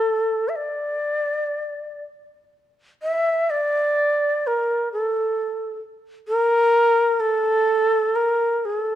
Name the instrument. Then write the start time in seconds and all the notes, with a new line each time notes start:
shakuhachi
Already playing: A4
0.49 E5
0.56 D5
3.03 E5
3.50 D5
4.47 A#4
4.93 A4
6.28 A#4
7.20 A4
8.16 A#4
8.65 G#4
8.78 A4